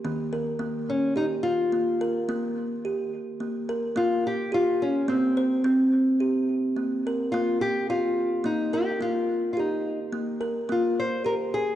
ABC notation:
X:1
M:3/4
L:1/16
Q:"Swing 16ths" 1/4=107
K:none
V:1 name="Nylon-string guitar"
z6 _D2 _E2 F2- | F8- F2 z2 | z4 F2 G2 F2 _D2 | C4 z8 |
z4 F2 G2 F4 | _E2 G2 F3- F/2 F/2 E3 z | z4 F2 c2 _B2 _A2 |]
V:2 name="Kalimba"
_B,2 _B2 B,4 G4 | z2 _B2 _B,4 G4 | z2 _B2 _B,4 G4 | C2 c2 C4 G4 |
z2 _B2 _B,4 G4 | z2 _B2 _B,4 G4 | z2 _B2 _B,4 G4 |]
V:3 name="Kalimba"
_E,12 | _B,12 | _B,12 | _B,12 |
_B,12 | _B,12 | _B,12 |]